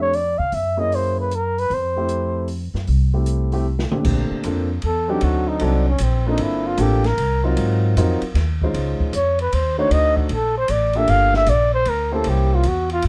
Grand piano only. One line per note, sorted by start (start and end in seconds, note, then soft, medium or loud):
0.00 0.11 A3 soft
0.00 0.11 C4 soft
0.00 0.11 D4 soft
0.00 0.11 G4 medium
0.77 1.27 A#3 medium
0.77 1.28 C#4 medium
0.77 1.28 E4 soft
0.77 1.28 G#4 medium
1.97 2.46 A3 medium
1.97 2.46 C4 soft
1.97 2.46 E4 medium
1.97 2.46 G4 medium
3.14 3.50 A3 soft
3.14 3.50 C4 soft
3.14 3.50 E4 soft
3.14 3.50 G4 medium
3.52 3.64 A3 medium
3.52 3.65 C4 medium
3.52 3.65 E4 soft
3.52 3.65 G4 medium
3.92 4.41 A#2 medium
3.92 4.41 A3 soft
3.92 4.41 C4 soft
3.92 4.42 D4 soft
3.92 4.42 G4 medium
4.44 4.67 A#3 medium
4.44 4.68 C4 medium
4.44 4.67 D4 medium
4.44 4.68 F4 soft
4.44 4.68 A4 medium
5.08 5.58 F#3 medium
5.08 5.58 C4 medium
5.08 5.59 D4 medium
5.08 5.59 D#4 medium
5.08 5.59 A4 medium
5.61 5.84 F#3 medium
5.61 5.84 C4 medium
5.61 5.84 D4 medium
5.61 5.84 D#4 medium
5.61 5.84 A4 medium
6.26 6.76 A#3 medium
6.26 6.76 C4 medium
6.26 6.76 D4 medium
6.26 6.76 F4 medium
6.26 6.76 A4 medium
6.78 7.01 A#3 medium
6.78 7.02 C4 medium
6.78 7.02 D4 medium
6.78 7.02 F4 medium
6.78 7.02 A4 medium
7.44 7.93 F#3 medium
7.44 7.93 C4 medium
7.44 7.94 D#4 medium
7.44 7.94 F4 medium
7.44 7.94 A#4 medium
7.97 8.20 F#3 medium
7.97 8.20 C4 medium
7.97 8.20 D#4 medium
7.97 8.20 F4 medium
7.97 8.20 A#4 medium
8.63 9.12 G#3 medium
8.63 9.11 C#4 medium
8.63 9.12 D#4 medium
8.63 9.12 F4 medium
8.63 9.12 C5 medium
9.78 10.27 A3 medium
9.78 10.28 D4 medium
9.78 10.28 D#4 medium
9.78 10.28 F#4 medium
9.78 10.28 C5 medium
10.95 11.45 A#3 medium
10.95 11.45 D4 medium
10.95 11.45 F4 medium
10.95 11.45 G4 medium
10.95 11.46 A4 medium
12.12 12.61 A#3 medium
12.12 12.62 C#4 medium
12.12 12.62 E4 medium
12.12 12.62 G4 medium
12.12 12.62 C5 medium